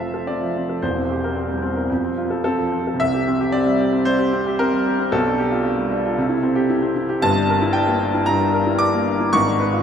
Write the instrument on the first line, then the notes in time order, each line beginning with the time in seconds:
grand piano
Already playing: F1 F2 C3 F3 C4 A4 E5 F5 A5
0.00 F4
0.14 A4
0.27 C4 D5
0.43 F3
0.56 C4
0.69 A4
0.82 E1 E2 C5
0.96 C4
1.10 G4
1.24 A#4
1.36 C4
1.50 G3
1.62 C4
1.76 A#4
1.90 F2
2.04 C4
2.18 F4
2.30 A4
2.44 C4 A4
2.59 F3
2.72 C4
2.87 A4
2.94 C3
3.00 C2 E5
3.14 G4
3.28 C4
3.40 G4
3.52 C4 D5
3.66 G3
3.80 G4
3.92 C4
4.05 G3 C5
4.19 G4
4.33 C4
4.46 G4
4.59 C4 A#4
4.73 G3
4.86 G4
4.99 C4
5.12 B1 B2 A4
5.25 D4
5.38 G4
5.51 F4
5.64 D4
5.79 G3
5.92 D4
6.05 F4
6.18 C3
6.29 E4
6.43 C4
6.55 G4
6.70 E4
6.82 C4
6.96 E4
7.09 G4
7.22 G1 G2 A5
7.36 D4
7.50 A#4
7.62 E4
7.73 D4 G5
7.87 A#3
8.00 D4
8.14 E4
8.26 G2 A#5
8.40 D4
8.53 A#4
8.67 E4
8.79 D4 D6
8.94 A#3
9.08 D4
9.20 E4
9.33 G#1 G#2 C#6
9.47 D4
9.60 B4
9.73 F4